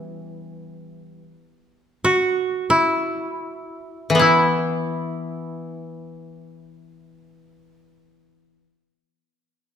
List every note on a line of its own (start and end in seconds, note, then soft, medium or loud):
0.00 1.32 E3 soft
0.00 1.42 E3 soft
0.00 1.23 G3 soft
0.00 0.85 B3 soft
0.00 0.72 C#4 soft
0.00 1.01 E4 medium
2.05 4.16 F#4 medium
2.70 4.21 E4 medium
4.10 8.56 E3 soft
4.15 8.61 B3 soft
4.19 8.65 E4 soft
4.19 8.63 E4 soft